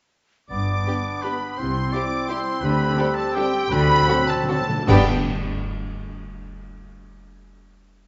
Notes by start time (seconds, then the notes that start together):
0.49 G1 G2 B3 D4 D5 D6
0.87 G3 B3 D4 G4 B4
1.22 G3 B3 D4 G4 B4 B5
1.57 C2 C3 C4 E4 C5 C6
1.92 G3 C4 E4 G4 C5 D5 D6
2.28 G3 C4 E4 G4 C5 C6
2.61 D2 D3 G4 B4 B5
2.98 G3 C4 D4 G4 A4
3.15 A4 A5
3.34 G3 C4 D4 G4 A4 G5
3.69 D2 D3 C4 F#4 B4 B5
3.86 D3
3.94 D3
4.02 D3
4.08 D3 F#3 C4 D4 F#4 A4
4.19 D3
4.26 D3 A4 A5
4.35 D3
4.43 D3
4.48 F#3 C4 D4 F#4 A4 A5
4.52 D3
4.61 D3
4.69 D3
4.78 D3
4.87 G1 G2 G3 B3 D4 G4 B4 D5 G5, concert bass drum, crash